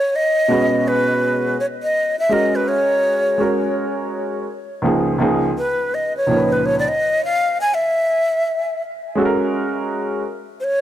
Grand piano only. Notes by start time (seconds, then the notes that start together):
0.48 B2 G#3 C#4 F#4 B4
2.29 G#3 C#4 F#4 A#4
3.38 G#3 C#4 F#4 A#4
4.82 C#2 F3 A#3 D#4 G#4
5.18 C#2 F3 A#3 D#4 G#4
6.27 C#2 A#2 F3 D#4 A#4
6.37 B4
9.15 G#3 C#4 F#4 A4
9.25 A#4